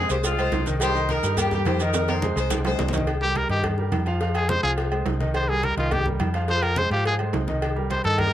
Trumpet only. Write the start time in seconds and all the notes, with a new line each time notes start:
3.22 G4
3.37 A#4
3.51 G4
4.35 G#4
4.49 C5
4.63 G#4
5.35 C5
5.49 G#4
5.64 A#4
5.78 F4
5.93 G4
6.50 C5
6.63 A#4
6.78 C5
6.91 G4
7.07 G#4
7.91 C5
8.05 A4
8.19 A#4